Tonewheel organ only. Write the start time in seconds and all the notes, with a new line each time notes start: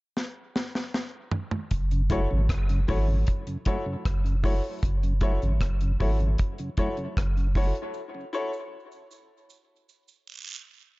1.92 F#2 C#3
2.10 F#3 A3 E4
2.31 F#2 C#3
2.70 F#2 C#3
2.88 F#3 A3 E4
3.08 F#2 C#3
3.47 F#2 C#3
3.66 F#3 A3 E4
3.86 F#2 C#3
4.24 F#2 C#3
4.43 F#3 A3 E4
5.03 F#2 C#3
5.22 F#3 A3 E4
5.43 F#2 C#3
5.82 F#2 C#3
6.00 F#3 A3 E4
6.19 F#2 C#3
6.60 F#2 C#3
6.78 F#3 A3 E4
6.97 F#2 C#3
7.37 F#2 C#3
7.55 F#3 A3 E4
8.15 F#2 C#3